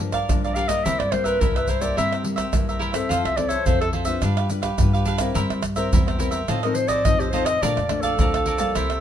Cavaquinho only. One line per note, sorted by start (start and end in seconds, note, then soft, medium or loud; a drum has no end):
0.01 muted cavaquinho stroke soft
0.13 0.42 A#4 medium
0.13 0.41 D5 medium
0.13 0.41 F5 medium
0.44 0.55 A#4 soft
0.44 0.55 D5 soft
0.44 0.56 F5 soft
0.56 0.69 G4 medium
0.56 0.69 A#4 medium
0.56 0.69 D5 medium
0.56 0.68 F5 medium
0.69 0.84 A#4 soft
0.69 0.83 D5 soft
0.69 0.83 F5 soft
0.85 1.10 E4 medium
0.85 1.10 A#4 medium
0.85 1.10 C5 medium
0.85 1.11 E5 medium
1.11 muted cavaquinho stroke soft
1.24 1.39 A#4 medium
1.24 1.39 C5 medium
1.24 1.39 E5 medium
1.41 1.54 E4 medium
1.41 1.54 A#4 medium
1.41 1.55 C5 medium
1.41 1.55 E5 medium
1.57 1.68 A#4 soft
1.57 1.68 C5 soft
1.57 1.68 E5 soft
1.68 1.82 E4 medium
1.68 1.81 A#4 soft
1.68 1.81 C5 medium
1.68 1.80 E5 medium
1.81 1.96 A#4 medium
1.81 1.96 C5 medium
1.81 1.95 E5 medium
1.97 2.10 E4 medium
1.97 2.11 A#4 medium
1.97 2.10 C5 medium
1.97 2.11 E5 medium
2.12 2.23 A#4 soft
2.12 2.24 C5 soft
2.12 2.23 E5 medium
2.24 muted cavaquinho stroke soft
2.36 2.66 A#4 soft
2.36 2.65 C5 medium
2.36 2.65 E5 medium
2.69 2.79 A#4 soft
2.69 2.79 C5 soft
2.69 2.79 E5 soft
2.79 2.94 E4 medium
2.79 2.92 A#4 medium
2.79 2.92 C5 medium
2.79 2.91 E5 medium
2.92 3.08 A#4 soft
2.92 3.08 C5 soft
2.92 3.07 E5 soft
3.09 3.35 F4 medium
3.09 3.36 A4 medium
3.09 3.36 C5 medium
3.09 3.36 E5 medium
3.36 muted cavaquinho stroke soft
3.49 3.65 A4 medium
3.49 3.64 C5 medium
3.49 3.64 E5 medium
3.66 3.80 F4 medium
3.66 3.80 A4 medium
3.66 3.80 C5 soft
3.66 3.80 E5 medium
3.81 3.93 A4 soft
3.81 3.93 C5 soft
3.81 3.94 E5 soft
3.93 4.07 F4 medium
3.93 4.05 A4 medium
3.93 4.05 C5 medium
3.93 4.04 E5 medium
4.05 4.21 A4 medium
4.05 4.21 C5 medium
4.05 4.20 E5 medium
4.23 4.36 D4 medium
4.23 4.36 G4 medium
4.23 4.37 B4 medium
4.23 4.36 F5 medium
4.37 4.49 G4 soft
4.37 4.49 B4 medium
4.37 4.50 F5 medium
4.50 muted cavaquinho stroke soft
4.62 4.92 G4 medium
4.62 4.92 B4 medium
4.62 4.91 F5 medium
4.93 5.05 G4 soft
4.93 5.06 B4 soft
4.93 5.06 F5 medium
5.06 5.20 D4 medium
5.06 5.19 G4 medium
5.06 5.18 B4 medium
5.06 5.17 F5 medium
5.18 5.34 G4 soft
5.18 5.34 B4 soft
5.18 5.33 F5 soft
5.34 5.62 E4 medium
5.34 5.62 A#4 medium
5.34 5.63 C5 medium
5.34 5.62 E5 medium
5.63 muted cavaquinho stroke soft
5.76 5.91 A#4 medium
5.76 5.91 C5 medium
5.76 5.91 E5 medium
5.92 6.06 E4 medium
5.92 6.06 A#4 medium
5.92 6.06 C5 medium
5.92 6.06 E5 medium
6.07 6.18 A#4 soft
6.07 6.19 C5 soft
6.07 6.19 E5 soft
6.19 6.33 E4 medium
6.19 6.31 A#4 medium
6.19 6.30 C5 medium
6.19 6.30 E5 medium
6.31 6.47 A#4 medium
6.31 6.47 C5 medium
6.31 6.46 E5 medium
6.48 6.62 F4 medium
6.48 6.62 A4 medium
6.48 6.63 C5 medium
6.48 6.62 D#5 medium
6.63 6.75 A4 soft
6.63 6.75 C5 medium
6.63 6.75 D#5 medium
6.75 muted cavaquinho stroke soft
6.88 7.18 A4 medium
6.88 7.18 C5 medium
6.88 7.17 D#5 medium
7.21 7.32 A4 soft
7.21 7.32 C5 soft
7.21 7.33 D#5 soft
7.33 7.47 F4 medium
7.33 7.45 A4 medium
7.33 7.45 C5 medium
7.33 7.44 D#5 medium
7.45 7.61 A4 soft
7.45 7.60 C5 soft
7.45 7.60 D#5 medium
7.62 7.88 A#4 medium
7.62 7.89 D5 medium
7.62 7.89 F5 medium
7.62 7.89 A5 medium
7.89 muted cavaquinho stroke soft
8.03 8.18 D5 medium
8.03 8.17 F5 medium
8.03 8.17 A5 medium
8.20 8.33 A#4 medium
8.20 8.33 D5 medium
8.20 8.33 F5 medium
8.20 8.33 A5 medium
8.35 8.46 D5 soft
8.35 8.46 F5 soft
8.35 8.47 A5 soft
8.47 8.60 A#4 medium
8.47 8.60 D5 medium
8.47 8.59 F5 soft
8.47 8.58 A5 medium
8.59 8.74 D5 soft
8.59 8.74 F5 medium
8.59 8.74 A5 medium
8.75 8.88 E4 medium
8.75 8.89 A#4 medium
8.75 8.89 C5 medium
8.75 8.89 E5 medium
8.91 9.00 A#4 soft
8.91 9.00 C5 medium
8.91 9.00 E5 soft